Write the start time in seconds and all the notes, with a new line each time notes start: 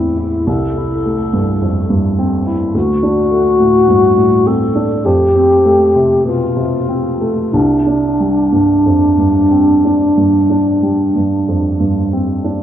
Already playing: A1 D2 E2 B3 C4 E4
0.17 E4
0.47 C2 A4
0.77 E4
1.05 A3
1.33 G2
1.62 F2
1.90 G2
2.19 C4
2.46 E4
2.74 D2 F#4
3.03 D4
3.31 A3
3.60 A2
3.88 G2
4.17 A2
4.46 C4 A4
4.75 D4
5.04 F2 G4
5.35 C4
5.66 A3
5.96 C3
6.26 B2 F4
6.57 C3
6.89 C4
7.21 A3
7.53 C2 D4
7.87 D4
8.20 G3
8.52 G2
8.86 F2
9.18 G2
9.51 C4
9.84 D4
10.17 G2
10.50 D4
10.83 G3
11.16 G2
11.48 F2
11.80 G2
12.13 C4
12.44 D4